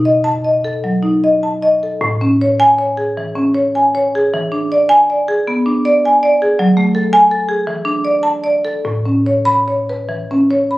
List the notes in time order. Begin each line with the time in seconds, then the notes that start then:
Already playing: B2 D#4
0.05 D#5
0.24 A5
0.44 D#5
0.64 A4
0.84 F#3
1.03 D#4
1.24 D#5
1.43 A5
1.62 D#5
1.83 A4
2.01 A2
2.21 C#4
2.41 C#5
2.60 G#5
2.79 C#5
2.97 G#4
3.17 E3
3.35 C#4
3.54 C#5
3.75 G#5
3.95 C#5
4.15 G#4
4.34 E3
4.52 D4
4.72 D5
4.89 G#5
5.10 D5
5.28 G#4
5.47 B3
5.66 D4
5.85 D5
6.05 G#5
6.23 D5
6.42 G#4
6.59 F#3
6.77 A3
6.95 A4
7.13 G#5
7.31 A4
7.49 G#4
7.67 E3
7.85 D4
8.05 D5
8.23 A5
8.44 D5
8.65 A4
8.85 A2
9.06 C#4
9.26 C#5
9.45 B5
9.68 C#5
9.89 B4
10.09 E3
10.31 C#4
10.51 C#5
10.71 B5